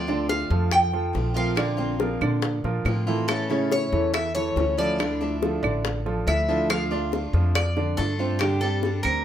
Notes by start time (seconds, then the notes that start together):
Already playing: D2 D5
0.07 D3 A3 C4 D4 F4 D5, high bongo
0.29 F5, high bongo
0.50 F2 F3 F4 A4, high bongo
0.71 G5, muted steel-string acoustic guitar stroke, high bongo, claves
0.93 F3 F4 A4, high bongo
1.13 A#1 D3 A3 C4 F4, high bongo, low bongo
1.34 F3 A3 C4 F4 A#4 F5
1.55 D3 A#3 C4 D4 F4 D5, high bongo, claves
1.77 A#3 C4 F4, high bongo
2.00 F3 F4 A#4, high bongo
2.21 A#2 D3 D4 D5, high bongo, claves
2.42 muted steel-string acoustic guitar stroke, high bongo
2.64 A#2 F3 F4 A#4, high bongo
2.85 A2 D3 A#3 C4 F4, high bongo, low bongo, claves
3.07 E3 A#3 C4 E4 F4 A4
3.28 E3 A3 C#4 E4 A4, high bongo, claves
3.50 C#3 A3 C#4 E4 C#5, high bongo
3.72 C#5, high bongo
3.92 E2 E3 E4 A4, high bongo
4.14 E5, muted steel-string acoustic guitar stroke, high bongo, claves
4.35 E3 E4 A4 C#5, high bongo
4.56 D2 E3 A3 C#4 E4, high bongo, low bongo
4.78 F3 A3 C#4 E4 F4 A4 D5
4.99 D3 F3 A3 D4 E4 D5, high bongo, claves
5.21 F3 A3 D4 E4, high bongo
5.42 F3 F4 A4, high bongo
5.63 A1 D3 D4 D5, high bongo, claves
5.85 muted steel-string acoustic guitar stroke, high bongo
6.06 F3 F4 A4, high bongo
6.27 D2 F3 A3 D4 E4 E5, high bongo, low bongo, claves
6.48 F3 A3 D4 E4 F4 A4
6.70 D3 F3 A3 D4 F4 F5, high bongo, claves
6.91 A3 D4 F4 D5, high bongo
7.12 D3 A3 D4 F4, high bongo
7.33 F2 F3 F4, high bongo
7.55 D5, muted steel-string acoustic guitar stroke, high bongo, claves
7.77 D3 D4, high bongo
7.97 G2 D3 A3 D4 F4 A4, high bongo, low bongo
8.19 A3 C4 D4 F4 C5
8.39 C3 D3 G3 C4 D4 G4, high bongo, claves
8.61 G3 C4 D4 G4 A4, high bongo
8.83 G3 C4 D4 G4, high bongo
9.03 D2 C4 A#4 C5, high bongo, claves